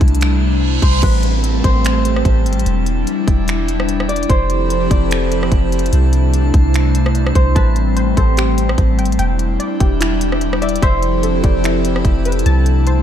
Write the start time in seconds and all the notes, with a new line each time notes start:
Already playing: C3 G3 A3 D4 E4 C5 D5 A5
0.01 C2, kick, closed hi-hat
0.08 closed hi-hat
0.15 closed hi-hat
0.21 finger snap, closed hi-hat, reverse cymbal
0.82 C2 C5, kick, closed hi-hat
1.03 A1 G3 A3 C4 G4 B4 A5, kick, closed hi-hat, crash, downlifter
1.23 closed hi-hat
1.44 closed hi-hat
1.64 A1 C5, kick, closed hi-hat
1.85 finger snap, closed hi-hat
2.05 closed hi-hat
2.16 cross-stick
2.25 A1, kick, closed hi-hat
2.46 G1, closed hi-hat
2.53 A1, closed hi-hat
2.59 closed hi-hat
2.66 E1 D4 E4 D5 G5, closed hi-hat
2.86 closed hi-hat
3.07 closed hi-hat
3.28 E1, kick, closed hi-hat
3.48 finger snap, closed hi-hat
3.68 closed hi-hat
3.80 cross-stick
3.89 closed hi-hat
4.00 cross-stick
4.09 D5, closed hi-hat
4.16 closed hi-hat
4.23 closed hi-hat
4.29 F1 F3 C4 E4 G4 A4 C5 A5 B5, kick, closed hi-hat
4.50 closed hi-hat
4.70 closed hi-hat
4.91 F1 D5, kick, closed hi-hat
5.11 finger snap, closed hi-hat
5.32 closed hi-hat
5.43 cross-stick
5.52 F1, kick, closed hi-hat
5.72 closed hi-hat
5.79 closed hi-hat
5.86 closed hi-hat
5.93 C2 C3 G3 A3 D4 C5, closed hi-hat
6.13 closed hi-hat
6.34 closed hi-hat
6.54 C2, kick, closed hi-hat
6.74 finger snap, closed hi-hat
6.95 closed hi-hat
7.06 cross-stick
7.15 closed hi-hat
7.27 cross-stick
7.35 C2 C5, kick, closed hi-hat
7.55 A1 C4 G4 B4 A5, kick, closed hi-hat
7.76 closed hi-hat
7.97 C5, closed hi-hat
8.17 A1 A4 C5, kick, closed hi-hat
8.37 G4, finger snap, closed hi-hat
8.58 closed hi-hat
8.69 cross-stick
8.78 A1, kick, closed hi-hat
8.99 G1 G5, closed hi-hat
9.06 A1, closed hi-hat
9.12 closed hi-hat
9.19 E1 D4 E4 D5 G5, closed hi-hat
9.39 closed hi-hat
9.60 D5, closed hi-hat
9.80 E1 G4, kick, closed hi-hat
10.01 E4, finger snap, closed hi-hat
10.21 closed hi-hat
10.32 cross-stick
10.41 closed hi-hat
10.53 cross-stick
10.62 D5 E5, closed hi-hat
10.69 closed hi-hat
10.76 closed hi-hat
10.82 F1 F3 C4 E4 G4 A4 C5 E5 G5 A5 B5, kick, closed hi-hat
11.03 closed hi-hat
11.23 A4, closed hi-hat
11.44 F1 G4 D5, kick, closed hi-hat
11.64 E4, finger snap, closed hi-hat
11.85 closed hi-hat
11.96 cross-stick
12.05 F1, kick, closed hi-hat
12.25 B4, closed hi-hat
12.32 closed hi-hat
12.39 closed hi-hat
12.46 C2 C3 G3 A3 D4 E4 C5 A5, closed hi-hat
12.66 closed hi-hat
12.87 C5, closed hi-hat